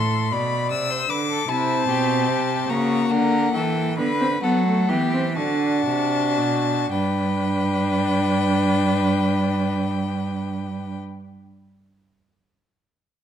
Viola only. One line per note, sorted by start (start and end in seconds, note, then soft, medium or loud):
1.49 2.71 C4 medium
2.70 3.98 A#3 medium
3.98 4.06 B3 medium
4.21 4.29 C4 medium
4.43 4.66 B3 medium
4.66 4.91 A3 medium
4.90 5.13 B3 medium
5.14 5.22 C4 medium
5.38 6.90 D4 medium
6.93 10.97 D4 medium